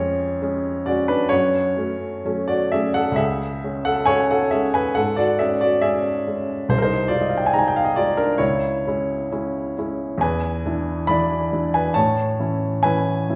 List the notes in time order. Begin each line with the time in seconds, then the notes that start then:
Already playing: F2 G#3 C#4 F4 C#5
0.42 G#3 C#4
0.86 G#3 C#4 F#4 D5
1.08 D4 B4
1.29 F#2 F#4 C#5
1.77 F#3 A3 C#4
2.25 F#3 A3 C#4
2.48 F#4 D5
2.72 F#3 A3 C#4 G#4 E5
2.94 A4 F#5
3.12 C#2
3.16 G#4 E5
3.64 G#3 C#4
3.85 A4 F#5
4.06 G#3 C#4 C#5 G#5
4.31 A4 F#5
4.51 G#3 C#4 G#4 E5
4.74 B4 G#5
4.95 G#2 A4 F#5
5.16 F#4 D5
5.39 G#3 C#4 G#4 E5
5.61 F#4 D5
5.82 G#3 C#4 G#4 E5
6.27 G#3 C#4
6.69 C2 C5
6.78 A#4
6.82 D#4 C5
7.08 F4 D5
7.13 G#3 D#4
7.21 D#5
7.30 F5
7.37 G5
7.46 G#5
7.53 G#3 D#4 A#5
7.59 G#5
7.68 G5
7.76 F5
7.85 D#5
7.96 G#3 D#4 F4 D5
8.17 D4 A#4
8.38 C#2 E4 C#5
8.87 G#3 C#4 E4
9.32 G#3 C#4 E4
9.78 G#3 C#4 E4
10.18 E2 G#5
10.22 B4
10.66 E3 D4 E4
11.07 E3 D4 E4 D5 B5
11.53 E3 D4 E4
11.74 B4 G#5
11.94 A2 C#5 A5
12.39 E3 C#4 E4
12.83 E3 C#4 E4 B4 G#5
13.29 E3 C#4 E4